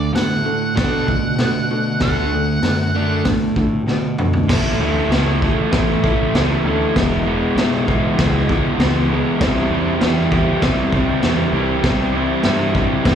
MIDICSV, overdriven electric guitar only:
0, 0, Header, 1, 2, 480
1, 0, Start_track
1, 0, Tempo, 619835
1, 1555, Time_signature, 4, 2, 24, 8
1, 4908, Tempo, 610376
1, 10265, End_track
2, 0, Start_track
2, 0, Title_t, "Overdriven electric guitar"
2, 0, Program_c, 0, 29
2, 0, Note_on_c, 0, 50, 72
2, 0, Note_on_c, 0, 57, 79
2, 84, Note_off_c, 0, 57, 0
2, 85, Note_off_c, 0, 50, 0
2, 104, Note_on_c, 0, 57, 82
2, 105, Note_on_c, 0, 50, 75
2, 323, Note_off_c, 0, 50, 0
2, 323, Note_off_c, 0, 57, 0
2, 351, Note_on_c, 0, 50, 75
2, 356, Note_on_c, 0, 57, 75
2, 567, Note_off_c, 0, 50, 0
2, 569, Note_off_c, 0, 57, 0
2, 589, Note_on_c, 0, 50, 82
2, 592, Note_on_c, 0, 57, 93
2, 598, Note_on_c, 0, 62, 98
2, 817, Note_off_c, 0, 50, 0
2, 818, Note_off_c, 0, 57, 0
2, 821, Note_off_c, 0, 62, 0
2, 832, Note_on_c, 0, 50, 77
2, 835, Note_on_c, 0, 57, 74
2, 1049, Note_off_c, 0, 50, 0
2, 1050, Note_off_c, 0, 57, 0
2, 1088, Note_on_c, 0, 50, 65
2, 1092, Note_on_c, 0, 57, 70
2, 1297, Note_off_c, 0, 50, 0
2, 1299, Note_off_c, 0, 57, 0
2, 1327, Note_on_c, 0, 50, 80
2, 1331, Note_on_c, 0, 57, 78
2, 1537, Note_off_c, 0, 50, 0
2, 1539, Note_off_c, 0, 57, 0
2, 1560, Note_on_c, 0, 50, 98
2, 1560, Note_on_c, 0, 57, 97
2, 1566, Note_on_c, 0, 62, 102
2, 1784, Note_off_c, 0, 50, 0
2, 1784, Note_off_c, 0, 57, 0
2, 1787, Note_off_c, 0, 62, 0
2, 1806, Note_on_c, 0, 50, 71
2, 1812, Note_on_c, 0, 57, 77
2, 2018, Note_off_c, 0, 50, 0
2, 2020, Note_off_c, 0, 57, 0
2, 2042, Note_on_c, 0, 50, 80
2, 2054, Note_on_c, 0, 57, 80
2, 2256, Note_off_c, 0, 50, 0
2, 2262, Note_off_c, 0, 57, 0
2, 2284, Note_on_c, 0, 50, 92
2, 2293, Note_on_c, 0, 62, 94
2, 2294, Note_on_c, 0, 57, 88
2, 2506, Note_off_c, 0, 50, 0
2, 2511, Note_off_c, 0, 57, 0
2, 2511, Note_off_c, 0, 62, 0
2, 2523, Note_on_c, 0, 50, 71
2, 2526, Note_on_c, 0, 57, 80
2, 2736, Note_off_c, 0, 50, 0
2, 2738, Note_off_c, 0, 57, 0
2, 2762, Note_on_c, 0, 50, 76
2, 2767, Note_on_c, 0, 57, 75
2, 2976, Note_off_c, 0, 50, 0
2, 2978, Note_off_c, 0, 57, 0
2, 3004, Note_on_c, 0, 50, 62
2, 3007, Note_on_c, 0, 57, 62
2, 3216, Note_off_c, 0, 50, 0
2, 3218, Note_off_c, 0, 57, 0
2, 3250, Note_on_c, 0, 50, 63
2, 3252, Note_on_c, 0, 57, 71
2, 3459, Note_off_c, 0, 50, 0
2, 3460, Note_off_c, 0, 57, 0
2, 3477, Note_on_c, 0, 45, 103
2, 3487, Note_on_c, 0, 57, 101
2, 3488, Note_on_c, 0, 52, 103
2, 3491, Note_on_c, 0, 61, 105
2, 3493, Note_on_c, 0, 64, 107
2, 3704, Note_off_c, 0, 45, 0
2, 3713, Note_on_c, 0, 45, 81
2, 3716, Note_off_c, 0, 57, 0
2, 3718, Note_off_c, 0, 61, 0
2, 3721, Note_off_c, 0, 52, 0
2, 3724, Note_on_c, 0, 52, 83
2, 3725, Note_on_c, 0, 57, 88
2, 3727, Note_on_c, 0, 61, 93
2, 3728, Note_off_c, 0, 64, 0
2, 3732, Note_on_c, 0, 64, 91
2, 3942, Note_off_c, 0, 45, 0
2, 3951, Note_on_c, 0, 45, 87
2, 3953, Note_off_c, 0, 52, 0
2, 3953, Note_off_c, 0, 57, 0
2, 3954, Note_off_c, 0, 61, 0
2, 3956, Note_on_c, 0, 52, 102
2, 3962, Note_on_c, 0, 57, 88
2, 3963, Note_on_c, 0, 61, 103
2, 3964, Note_off_c, 0, 64, 0
2, 3967, Note_on_c, 0, 64, 113
2, 4190, Note_off_c, 0, 45, 0
2, 4196, Note_off_c, 0, 52, 0
2, 4196, Note_off_c, 0, 57, 0
2, 4199, Note_on_c, 0, 45, 88
2, 4199, Note_on_c, 0, 52, 77
2, 4203, Note_off_c, 0, 61, 0
2, 4205, Note_on_c, 0, 57, 84
2, 4208, Note_off_c, 0, 64, 0
2, 4211, Note_on_c, 0, 64, 97
2, 4212, Note_on_c, 0, 61, 94
2, 4417, Note_off_c, 0, 45, 0
2, 4424, Note_off_c, 0, 57, 0
2, 4425, Note_off_c, 0, 61, 0
2, 4426, Note_off_c, 0, 52, 0
2, 4427, Note_on_c, 0, 45, 95
2, 4429, Note_on_c, 0, 52, 96
2, 4434, Note_on_c, 0, 57, 96
2, 4435, Note_on_c, 0, 61, 99
2, 4439, Note_off_c, 0, 64, 0
2, 4442, Note_on_c, 0, 64, 100
2, 4662, Note_off_c, 0, 45, 0
2, 4669, Note_off_c, 0, 57, 0
2, 4671, Note_off_c, 0, 52, 0
2, 4672, Note_on_c, 0, 45, 86
2, 4674, Note_off_c, 0, 61, 0
2, 4675, Note_on_c, 0, 52, 97
2, 4678, Note_on_c, 0, 57, 91
2, 4680, Note_off_c, 0, 64, 0
2, 4683, Note_on_c, 0, 61, 90
2, 4683, Note_on_c, 0, 64, 106
2, 4907, Note_off_c, 0, 45, 0
2, 4913, Note_off_c, 0, 52, 0
2, 4916, Note_off_c, 0, 57, 0
2, 4916, Note_off_c, 0, 61, 0
2, 4916, Note_on_c, 0, 45, 89
2, 4916, Note_on_c, 0, 52, 89
2, 4925, Note_on_c, 0, 57, 88
2, 4926, Note_off_c, 0, 64, 0
2, 4926, Note_on_c, 0, 61, 98
2, 4929, Note_on_c, 0, 64, 80
2, 5141, Note_off_c, 0, 45, 0
2, 5151, Note_on_c, 0, 45, 90
2, 5153, Note_off_c, 0, 57, 0
2, 5155, Note_off_c, 0, 52, 0
2, 5155, Note_off_c, 0, 61, 0
2, 5158, Note_on_c, 0, 52, 94
2, 5163, Note_on_c, 0, 57, 102
2, 5164, Note_on_c, 0, 61, 95
2, 5170, Note_off_c, 0, 64, 0
2, 5173, Note_on_c, 0, 64, 89
2, 5378, Note_off_c, 0, 45, 0
2, 5381, Note_on_c, 0, 40, 92
2, 5384, Note_off_c, 0, 57, 0
2, 5385, Note_off_c, 0, 61, 0
2, 5385, Note_on_c, 0, 47, 106
2, 5387, Note_off_c, 0, 52, 0
2, 5390, Note_on_c, 0, 52, 100
2, 5393, Note_on_c, 0, 56, 102
2, 5398, Note_on_c, 0, 59, 103
2, 5399, Note_off_c, 0, 64, 0
2, 5402, Note_on_c, 0, 64, 102
2, 5618, Note_off_c, 0, 40, 0
2, 5622, Note_off_c, 0, 47, 0
2, 5627, Note_on_c, 0, 40, 84
2, 5631, Note_off_c, 0, 52, 0
2, 5631, Note_off_c, 0, 56, 0
2, 5631, Note_off_c, 0, 59, 0
2, 5631, Note_on_c, 0, 47, 88
2, 5635, Note_on_c, 0, 52, 98
2, 5640, Note_on_c, 0, 56, 85
2, 5640, Note_on_c, 0, 59, 92
2, 5643, Note_off_c, 0, 64, 0
2, 5646, Note_on_c, 0, 64, 97
2, 5861, Note_off_c, 0, 40, 0
2, 5866, Note_off_c, 0, 47, 0
2, 5870, Note_on_c, 0, 40, 102
2, 5873, Note_off_c, 0, 52, 0
2, 5876, Note_on_c, 0, 47, 112
2, 5876, Note_on_c, 0, 52, 98
2, 5877, Note_off_c, 0, 56, 0
2, 5879, Note_off_c, 0, 59, 0
2, 5886, Note_on_c, 0, 56, 102
2, 5887, Note_off_c, 0, 64, 0
2, 5888, Note_on_c, 0, 59, 109
2, 5890, Note_on_c, 0, 64, 98
2, 6099, Note_off_c, 0, 40, 0
2, 6107, Note_off_c, 0, 47, 0
2, 6108, Note_on_c, 0, 40, 90
2, 6113, Note_off_c, 0, 56, 0
2, 6114, Note_off_c, 0, 52, 0
2, 6115, Note_off_c, 0, 59, 0
2, 6116, Note_on_c, 0, 47, 88
2, 6117, Note_on_c, 0, 52, 97
2, 6122, Note_off_c, 0, 64, 0
2, 6122, Note_on_c, 0, 56, 98
2, 6124, Note_on_c, 0, 59, 92
2, 6125, Note_on_c, 0, 64, 91
2, 6351, Note_off_c, 0, 40, 0
2, 6352, Note_off_c, 0, 47, 0
2, 6361, Note_off_c, 0, 52, 0
2, 6361, Note_on_c, 0, 40, 90
2, 6361, Note_on_c, 0, 47, 110
2, 6363, Note_off_c, 0, 56, 0
2, 6363, Note_off_c, 0, 59, 0
2, 6364, Note_on_c, 0, 52, 100
2, 6372, Note_off_c, 0, 64, 0
2, 6372, Note_on_c, 0, 59, 98
2, 6373, Note_on_c, 0, 56, 107
2, 6376, Note_on_c, 0, 64, 113
2, 6592, Note_off_c, 0, 40, 0
2, 6599, Note_off_c, 0, 47, 0
2, 6602, Note_on_c, 0, 40, 83
2, 6606, Note_off_c, 0, 52, 0
2, 6608, Note_off_c, 0, 59, 0
2, 6609, Note_off_c, 0, 56, 0
2, 6609, Note_on_c, 0, 47, 100
2, 6609, Note_on_c, 0, 52, 84
2, 6617, Note_on_c, 0, 59, 104
2, 6619, Note_off_c, 0, 64, 0
2, 6619, Note_on_c, 0, 56, 104
2, 6622, Note_on_c, 0, 64, 95
2, 6834, Note_off_c, 0, 40, 0
2, 6836, Note_off_c, 0, 47, 0
2, 6843, Note_on_c, 0, 40, 93
2, 6845, Note_off_c, 0, 56, 0
2, 6846, Note_off_c, 0, 52, 0
2, 6846, Note_on_c, 0, 47, 94
2, 6849, Note_off_c, 0, 59, 0
2, 6849, Note_on_c, 0, 52, 81
2, 6854, Note_on_c, 0, 56, 94
2, 6857, Note_off_c, 0, 64, 0
2, 6859, Note_on_c, 0, 59, 93
2, 6861, Note_on_c, 0, 64, 95
2, 7075, Note_off_c, 0, 40, 0
2, 7081, Note_off_c, 0, 47, 0
2, 7085, Note_on_c, 0, 40, 85
2, 7087, Note_off_c, 0, 56, 0
2, 7090, Note_on_c, 0, 47, 104
2, 7092, Note_off_c, 0, 52, 0
2, 7094, Note_off_c, 0, 59, 0
2, 7095, Note_on_c, 0, 52, 99
2, 7096, Note_on_c, 0, 56, 101
2, 7102, Note_off_c, 0, 64, 0
2, 7104, Note_on_c, 0, 59, 99
2, 7105, Note_on_c, 0, 64, 85
2, 7308, Note_off_c, 0, 40, 0
2, 7311, Note_off_c, 0, 47, 0
2, 7314, Note_off_c, 0, 56, 0
2, 7317, Note_off_c, 0, 59, 0
2, 7321, Note_on_c, 0, 48, 92
2, 7327, Note_off_c, 0, 52, 0
2, 7331, Note_on_c, 0, 52, 101
2, 7334, Note_on_c, 0, 55, 111
2, 7340, Note_off_c, 0, 64, 0
2, 7340, Note_on_c, 0, 60, 104
2, 7343, Note_on_c, 0, 64, 115
2, 7561, Note_off_c, 0, 48, 0
2, 7564, Note_on_c, 0, 48, 93
2, 7565, Note_off_c, 0, 52, 0
2, 7566, Note_off_c, 0, 55, 0
2, 7568, Note_on_c, 0, 52, 92
2, 7569, Note_off_c, 0, 60, 0
2, 7569, Note_on_c, 0, 55, 89
2, 7571, Note_off_c, 0, 64, 0
2, 7573, Note_on_c, 0, 60, 93
2, 7574, Note_on_c, 0, 64, 105
2, 7793, Note_off_c, 0, 48, 0
2, 7794, Note_off_c, 0, 52, 0
2, 7796, Note_off_c, 0, 55, 0
2, 7796, Note_on_c, 0, 48, 92
2, 7797, Note_on_c, 0, 52, 88
2, 7799, Note_on_c, 0, 55, 105
2, 7806, Note_off_c, 0, 64, 0
2, 7807, Note_off_c, 0, 60, 0
2, 7810, Note_on_c, 0, 60, 100
2, 7810, Note_on_c, 0, 64, 105
2, 8033, Note_off_c, 0, 48, 0
2, 8035, Note_off_c, 0, 52, 0
2, 8036, Note_on_c, 0, 48, 84
2, 8038, Note_off_c, 0, 55, 0
2, 8038, Note_on_c, 0, 52, 91
2, 8040, Note_off_c, 0, 60, 0
2, 8042, Note_on_c, 0, 55, 95
2, 8043, Note_on_c, 0, 60, 93
2, 8048, Note_off_c, 0, 64, 0
2, 8052, Note_on_c, 0, 64, 101
2, 8267, Note_off_c, 0, 48, 0
2, 8274, Note_off_c, 0, 55, 0
2, 8276, Note_on_c, 0, 48, 103
2, 8278, Note_off_c, 0, 52, 0
2, 8278, Note_off_c, 0, 60, 0
2, 8281, Note_on_c, 0, 52, 99
2, 8284, Note_on_c, 0, 55, 107
2, 8288, Note_on_c, 0, 60, 91
2, 8289, Note_off_c, 0, 64, 0
2, 8292, Note_on_c, 0, 64, 101
2, 8515, Note_off_c, 0, 48, 0
2, 8522, Note_off_c, 0, 55, 0
2, 8525, Note_on_c, 0, 48, 99
2, 8526, Note_off_c, 0, 52, 0
2, 8529, Note_on_c, 0, 52, 90
2, 8530, Note_off_c, 0, 60, 0
2, 8531, Note_on_c, 0, 55, 98
2, 8539, Note_on_c, 0, 60, 107
2, 8541, Note_off_c, 0, 64, 0
2, 8545, Note_on_c, 0, 64, 100
2, 8741, Note_off_c, 0, 48, 0
2, 8751, Note_on_c, 0, 48, 80
2, 8754, Note_off_c, 0, 52, 0
2, 8755, Note_off_c, 0, 55, 0
2, 8757, Note_on_c, 0, 52, 98
2, 8759, Note_off_c, 0, 60, 0
2, 8764, Note_on_c, 0, 55, 98
2, 8767, Note_off_c, 0, 64, 0
2, 8768, Note_on_c, 0, 60, 99
2, 8770, Note_on_c, 0, 64, 109
2, 8984, Note_off_c, 0, 48, 0
2, 8990, Note_off_c, 0, 55, 0
2, 8994, Note_on_c, 0, 48, 87
2, 8997, Note_off_c, 0, 52, 0
2, 8998, Note_off_c, 0, 60, 0
2, 8999, Note_on_c, 0, 55, 101
2, 9000, Note_on_c, 0, 52, 84
2, 9005, Note_off_c, 0, 64, 0
2, 9007, Note_on_c, 0, 60, 105
2, 9008, Note_on_c, 0, 64, 100
2, 9225, Note_off_c, 0, 48, 0
2, 9232, Note_off_c, 0, 55, 0
2, 9234, Note_on_c, 0, 48, 106
2, 9236, Note_off_c, 0, 52, 0
2, 9238, Note_off_c, 0, 60, 0
2, 9239, Note_on_c, 0, 52, 89
2, 9242, Note_on_c, 0, 55, 97
2, 9247, Note_on_c, 0, 60, 105
2, 9248, Note_off_c, 0, 64, 0
2, 9252, Note_on_c, 0, 64, 105
2, 9457, Note_off_c, 0, 48, 0
2, 9466, Note_on_c, 0, 48, 92
2, 9467, Note_off_c, 0, 55, 0
2, 9472, Note_off_c, 0, 60, 0
2, 9473, Note_off_c, 0, 52, 0
2, 9476, Note_on_c, 0, 52, 81
2, 9477, Note_on_c, 0, 55, 86
2, 9482, Note_on_c, 0, 60, 97
2, 9484, Note_off_c, 0, 64, 0
2, 9487, Note_on_c, 0, 64, 101
2, 9697, Note_off_c, 0, 48, 0
2, 9704, Note_off_c, 0, 55, 0
2, 9706, Note_on_c, 0, 48, 100
2, 9707, Note_off_c, 0, 52, 0
2, 9707, Note_off_c, 0, 60, 0
2, 9710, Note_on_c, 0, 52, 89
2, 9713, Note_on_c, 0, 55, 103
2, 9715, Note_off_c, 0, 64, 0
2, 9717, Note_on_c, 0, 60, 113
2, 9718, Note_on_c, 0, 64, 112
2, 9926, Note_off_c, 0, 48, 0
2, 9935, Note_on_c, 0, 48, 80
2, 9937, Note_off_c, 0, 52, 0
2, 9938, Note_off_c, 0, 55, 0
2, 9940, Note_on_c, 0, 52, 83
2, 9944, Note_off_c, 0, 60, 0
2, 9947, Note_on_c, 0, 55, 99
2, 9950, Note_off_c, 0, 64, 0
2, 9953, Note_on_c, 0, 60, 92
2, 9953, Note_on_c, 0, 64, 99
2, 10166, Note_off_c, 0, 48, 0
2, 10175, Note_on_c, 0, 48, 89
2, 10178, Note_off_c, 0, 55, 0
2, 10179, Note_off_c, 0, 52, 0
2, 10180, Note_off_c, 0, 60, 0
2, 10182, Note_on_c, 0, 52, 84
2, 10187, Note_on_c, 0, 55, 86
2, 10190, Note_on_c, 0, 60, 103
2, 10192, Note_off_c, 0, 64, 0
2, 10195, Note_on_c, 0, 64, 97
2, 10265, Note_off_c, 0, 48, 0
2, 10265, Note_off_c, 0, 52, 0
2, 10265, Note_off_c, 0, 55, 0
2, 10265, Note_off_c, 0, 60, 0
2, 10265, Note_off_c, 0, 64, 0
2, 10265, End_track
0, 0, End_of_file